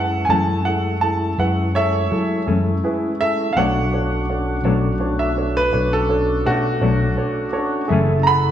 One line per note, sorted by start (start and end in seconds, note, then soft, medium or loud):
0.00 0.25 F#2 medium
0.00 3.51 G#3 medium
0.00 3.51 A3 medium
0.00 3.51 C#4 medium
0.00 0.20 E4 medium
0.00 3.51 E4 medium
0.00 0.20 G#4 soft
0.00 0.20 B4 medium
0.00 0.28 F#5 medium
0.25 1.34 F#2 medium
0.25 0.29 G#5 medium
0.29 0.52 F#2 medium
0.29 0.52 E3 medium
0.29 0.52 A3 medium
0.29 0.51 C#4 medium
0.29 0.56 E4 soft
0.29 0.56 G#4 soft
0.29 0.57 A4 medium
0.29 0.65 A5 medium
0.65 0.93 E4 medium
0.65 0.93 G#4 medium
0.65 0.94 A4 medium
0.65 1.00 F#5 medium
1.01 1.29 E4 medium
1.01 1.30 G#4 soft
1.01 1.30 A4 medium
1.01 1.37 A5 medium
1.38 2.07 F#2 medium
1.38 1.65 E4 medium
1.38 1.66 G#4 soft
1.38 1.66 B4 medium
1.38 1.74 F#5 medium
1.75 2.02 E4 medium
1.75 2.02 G#4 soft
1.75 2.02 A4 medium
1.75 2.43 C#5 medium
1.75 2.45 E5 loud
2.11 2.44 F#3 medium
2.11 2.38 E4 medium
2.11 2.38 G#4 medium
2.11 2.38 A4 medium
2.46 2.80 F#2 medium
2.46 2.70 F#2 medium
2.46 2.70 E3 medium
2.46 2.70 A3 medium
2.46 2.69 C#4 medium
2.46 2.74 E4 medium
2.46 2.74 G#4 soft
2.46 2.74 A4 medium
2.84 3.10 E4 medium
2.84 3.11 G#4 medium
2.84 3.11 B4 medium
3.20 3.47 E4 medium
3.20 3.47 G#4 medium
3.20 3.47 A4 medium
3.20 3.55 E5 loud
3.53 4.61 B1 medium
3.53 3.78 B2 medium
3.53 3.57 F5 medium
3.57 3.78 F#3 medium
3.57 3.78 A3 medium
3.57 7.88 A3 medium
3.57 7.88 C#4 medium
3.57 3.83 D4 medium
3.57 7.88 D4 medium
3.57 3.79 D4 medium
3.57 7.88 F#4 medium
3.57 3.83 A4 medium
3.57 3.84 C#5 medium
3.57 5.15 F#5 loud
3.93 4.19 D4 medium
3.93 4.20 A4 medium
3.93 4.20 C#5 medium
4.30 4.56 D4 medium
4.30 4.56 A4 soft
4.30 4.56 C#5 medium
4.64 5.68 B1 medium
4.64 4.87 B2 medium
4.64 4.87 F#3 medium
4.64 4.87 A3 medium
4.64 4.86 D4 medium
4.64 4.92 D4 medium
4.64 4.92 A4 medium
4.64 4.92 C#5 medium
5.00 5.27 D4 medium
5.00 5.27 A4 medium
5.00 5.28 C#5 medium
5.19 5.54 E5 medium
5.36 5.64 D4 medium
5.36 5.64 A4 soft
5.36 5.64 C#5 medium
5.57 5.91 B4 medium
5.73 6.42 B1 loud
5.73 6.00 D4 medium
5.73 6.00 A4 medium
5.73 6.00 C#5 medium
5.93 6.45 A4 medium
6.09 6.36 D4 medium
6.09 6.36 A4 medium
6.09 6.37 C#5 medium
6.46 6.79 B2 medium
6.46 7.87 A3 medium
6.46 6.73 D4 medium
6.46 7.87 F#4 medium
6.46 6.73 A4 soft
6.46 6.73 C#5 medium
6.81 7.15 B1 medium
6.81 7.05 B2 medium
6.81 7.04 F#3 medium
6.81 7.04 A3 medium
6.81 7.08 D4 medium
6.81 7.04 D4 medium
6.81 7.09 A4 medium
6.81 7.09 C#5 medium
7.17 7.44 D4 medium
7.17 7.45 A4 soft
7.17 7.45 C#5 medium
7.53 7.81 D4 medium
7.53 7.81 A4 medium
7.53 7.81 C#5 medium
7.88 8.51 F#1 medium
7.88 8.12 F#2 medium
7.88 8.12 E3 medium
7.88 8.13 A3 medium
7.88 8.16 G#4 medium
7.88 8.16 A4 medium
7.88 8.17 E5 medium
7.92 8.51 A3 medium
7.92 8.13 C#4 medium
7.92 8.51 C#4 medium
7.92 8.51 E4 medium
7.92 8.51 A4 medium
8.23 8.51 G#4 medium
8.23 8.51 A4 soft
8.23 8.51 F#5 medium
8.23 8.27 A#5 medium
8.23 8.51 B5 loud